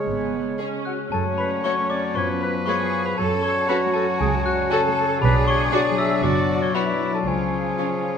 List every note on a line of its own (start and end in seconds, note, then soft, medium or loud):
0.00 1.15 C#3 soft
0.00 0.32 G#3 soft
0.00 0.82 G#3 soft
0.00 0.83 G#3 soft
0.00 0.85 G#4 soft
0.00 0.86 G#4 soft
0.00 0.58 C#5 soft
0.00 0.82 C#5 medium
0.00 0.86 C#5 medium
0.00 0.82 F6 medium
0.05 0.48 G#1 medium
0.05 0.48 G#2 soft
0.05 0.58 B3 soft
0.05 3.96 C#4 soft
0.33 1.14 G#3 soft
0.59 1.11 C#4 soft
0.59 0.67 G#4 soft
0.59 1.29 C#5 soft
0.59 0.68 C#5 soft
0.85 0.98 F#4 soft
0.85 1.15 G#4 soft
0.85 0.92 F#5 soft
0.85 1.10 F#6 medium
1.12 1.53 F#2 medium
1.12 2.15 F#2 medium
1.12 2.17 F#3 medium
1.12 2.12 A3 medium
1.12 2.63 C#4 medium
1.12 2.12 F#4 medium
1.12 1.24 A4 medium
1.12 2.17 C#5 medium
1.12 1.36 A5 medium
1.12 1.18 A5 medium
1.30 1.63 C#5 soft
1.38 1.50 B4 medium
1.38 1.62 B5 medium
1.38 1.44 B5 medium
1.47 1.76 D5 soft
1.64 1.72 A3 soft
1.64 1.72 F#4 soft
1.64 1.98 C#5 soft
1.64 1.76 C#5 medium
1.64 1.73 C#5 soft
1.64 1.88 C#6 medium
1.64 1.89 C#6 medium
1.82 2.18 A3 soft
1.90 2.15 D5 medium
1.90 2.14 D6 medium
1.90 1.96 D6 medium
1.99 2.32 C#5 soft
2.15 2.56 F#2 medium
2.15 3.17 F#2 medium
2.15 3.18 F3 medium
2.15 3.18 B3 medium
2.15 3.18 F4 medium
2.15 3.19 B4 medium
2.15 2.28 C#5 medium
2.15 2.39 C#6 medium
2.15 2.22 C#6 medium
2.34 2.66 C#5 soft
2.41 2.54 B4 medium
2.41 2.65 B5 medium
2.41 2.47 B5 medium
2.51 2.79 D5 soft
2.66 2.75 G#3 soft
2.66 2.74 F4 soft
2.66 3.17 G#4 medium
2.66 2.76 B4 soft
2.66 3.00 C#5 soft
2.66 3.07 C#5 medium
2.66 3.02 C#6 medium
2.66 3.05 C#6 medium
2.84 3.20 B3 soft
3.01 3.34 C#5 medium
3.06 3.18 B4 medium
3.06 3.18 B5 medium
3.18 5.24 F#2 medium
3.18 3.59 F#2 medium
3.18 5.18 F#3 medium
3.18 5.18 C#4 medium
3.18 7.27 F#4 medium
3.18 3.43 A4 medium
3.18 3.68 A4 medium
3.18 5.21 C#5 medium
3.18 3.42 A5 medium
3.18 3.24 A5 medium
3.35 3.68 C#5 soft
3.43 3.68 C#5 medium
3.43 3.67 C#6 medium
3.43 3.50 C#6 medium
3.52 3.81 D5 soft
3.68 3.77 C#4 medium
3.68 3.76 F#4 medium
3.68 4.71 F#4 medium
3.68 3.78 A4 medium
3.68 3.80 B4 medium
3.68 4.02 C#5 medium
3.68 3.93 B5 medium
3.68 3.75 B5 medium
3.86 4.86 A3 medium
3.94 4.06 A4 medium
3.94 4.18 A5 medium
3.94 4.19 A5 medium
4.03 4.35 C#5 medium
4.20 4.60 C#2 medium
4.20 5.24 C#3 medium
4.20 4.32 G#4 medium
4.20 4.45 G#5 medium
4.20 4.44 G#5 medium
4.37 4.70 C#5 medium
4.45 4.57 F#4 medium
4.45 4.72 F#5 medium
4.45 4.69 F#6 medium
4.53 4.83 D5 medium
4.71 4.79 C#4 medium
4.71 4.79 F#4 medium
4.71 5.22 A4 medium
4.71 4.83 A4 medium
4.71 4.80 A4 medium
4.71 5.03 C#5 medium
4.71 4.96 A5 medium
4.71 4.95 A5 medium
4.88 5.24 A3 medium
4.96 5.22 A4 medium
4.96 5.20 A5 medium
4.96 5.21 A5 medium
5.04 5.24 C#5 medium
5.21 5.62 B1 medium
5.21 7.29 B2 medium
5.21 5.69 F#3 medium
5.21 7.28 D4 medium
5.21 6.22 G#4 medium
5.21 5.35 B4 medium
5.21 5.69 D5 medium
5.21 5.46 B5 medium
5.21 5.49 B5 medium
5.39 5.72 D5 medium
5.47 5.73 C#5 medium
5.47 5.72 C#6 medium
5.47 5.71 C#6 medium
5.56 5.85 E5 soft
5.72 6.23 F#3 medium
5.72 5.80 D4 medium
5.72 5.81 F#4 medium
5.72 5.82 F#4 medium
5.72 6.23 D5 medium
5.72 6.06 D5 medium
5.72 6.00 D5 medium
5.72 5.96 D6 medium
5.72 5.79 D6 medium
5.90 6.92 F#3 medium
5.98 6.24 E5 medium
5.98 6.23 E6 medium
5.98 6.22 E6 medium
6.23 6.64 F#1 medium
6.23 6.74 F#3 medium
6.23 7.29 B3 medium
6.23 6.75 F#4 medium
6.23 6.74 D5 medium
6.23 6.64 D5 medium
6.23 6.61 D6 medium
6.23 6.59 D6 medium
6.42 6.74 D5 soft
6.59 6.76 C#5 medium
6.59 6.88 E5 soft
6.59 6.68 C#6 medium
6.63 6.75 C#6 medium
6.75 7.28 F#3 medium
6.75 6.83 D4 soft
6.75 7.27 E4 medium
6.75 6.83 F#4 medium
6.75 6.84 F#4 soft
6.75 7.13 B4 medium
6.75 7.28 D5 medium
6.75 7.11 B5 medium
6.75 7.16 B5 medium
6.93 7.29 F#3 soft
7.10 7.20 A4 medium
7.10 7.29 D5 soft
7.15 7.27 A5 medium
7.26 7.68 C#2 medium
7.26 8.18 C#3 soft
7.26 8.18 F3 medium
7.26 8.18 C#4 soft
7.26 8.18 F4 soft
7.26 8.18 F4 medium
7.26 8.18 G#4 medium
7.26 8.18 C#5 medium
7.26 8.18 G#5 medium
7.44 7.78 C#5 soft
7.78 7.86 C#4 soft
7.78 7.87 C#4 soft
7.78 7.87 F4 soft
7.78 8.12 C#5 soft
7.96 8.18 C#4 soft
8.13 8.18 C#5 soft